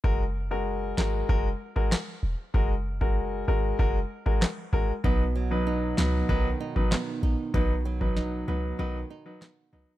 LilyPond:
<<
  \new Staff \with { instrumentName = "Grand piano" } { \time 4/4 \key fis \mixolydian \tempo 4 = 96 <gis fis' ais'>16 r8 <gis fis' ais'>8. <gis fis' ais'>8 <gis fis' ais'>16 r8 <gis fis' ais'>16 r4 | <gis fis' ais'>16 r8 <gis fis' ais'>8. <gis fis' ais'>8 <gis fis' ais'>16 r8 <gis fis' ais'>16 r8 <gis fis' ais'>16 r16 | <fis dis' b'>16 r8 <fis dis' b'>8. <fis dis' b'>8 <fis dis' b'>16 r8 <fis dis' b'>16 r4 | <fis dis' b'>16 r8 <fis dis' b'>8. <fis dis' b'>8 <fis dis' b'>16 r8 <fis dis' b'>16 r8 <fis dis' b'>16 r16 | }
  \new Staff \with { instrumentName = "Nylon-string guitar" } { \time 4/4 \key fis \mixolydian r1 | r1 | b,8 fis8 dis'8 b8 dis8 dis'8 b8 dis'8 | b,8 fis8 dis'8 b8 dis8 dis'8 b8 dis'8 | }
  \new Staff \with { instrumentName = "808-style bass" } { \clef bass \time 4/4 \key fis \mixolydian fis,,4. gis,,8 fis,,8 r4 e,,16 r16 | fis,,4. gis,,8 fis,,8 r4 gis,,16 r16 | b,,4. cis,8 b,,8 r4 ais,,16 r16 | b,,4. cis,8 b,,8 r4 cis,16 r16 | }
  \new DrumStaff \with { instrumentName = "Drums" } \drummode { \time 4/4 bd4 r8 <hc sn>8 bd8. bd16 <hc ss sn>4 | bd8. bd16 r4 bd8. bd16 <hc ss sn>8 bd8 | bd4 r8 <hc sn>8 bd8. bd16 <hc ss sn>4 | bd8. bd16 sn4 r4 <hc ss sn>4 | }
>>